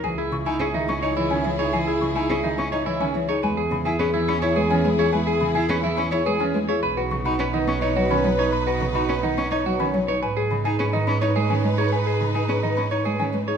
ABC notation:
X:1
M:3/4
L:1/16
Q:1/4=106
K:C#m
V:1 name="Marimba"
g G c' g G e c' d c g c G | g G c' g G e c' d c g c G | g G b g G e b c B g B G | g G b g G e b c B g B G |
b B c' b B f c' d c b c B | b B c' b B f c' d c b c B | g G b g G d b c B g B G | g G b g G d b c B g B G |]
V:2 name="Soprano saxophone"
E12- | E8- E3 z | G12- | G8- G3 z |
B12- | B8- B3 z | B12- | B8- B3 z |]
V:3 name="Clean electric guitar"
G E z E G D z c E C z c | G E z E G D z c E C z c | B G z G B E z c G C z c | B G z G B E z c G C z c |
B F z F B D z c F C z c | B F z F B D z c F C z c | B G z G B D z c G C z c | B G z G B D z c G C z c |]
V:4 name="String section"
[EG]12- | [EG]8- [EG]3 z | [EG]12- | [EG]8- [EG]3 z |
[DB]12- | [DB]8- [DB]3 z | [DB]12- | [DB]8- [DB]3 z |]
V:5 name="Cello" clef=bass
E, z C, D C D, C D E, D, E, D | E, z C, D C D, C D E, D, E, D | G, z C, E C E, C E G, E, G, E | G, z C, E C E, C E G, E, G, E |
z2 C, D C D, C D F, D, F, D | z2 C, D C D, C D F, D, F, D | z2 C, D C D, C D G, D, G, D | z2 C, D C D, C D G, D, G, D |]
V:6 name="Double bass" clef=bass
C,,12- | C,,12 | E,,12- | E,,12 |
B,,,12- | B,,,12 | G,,12- | G,,12 |]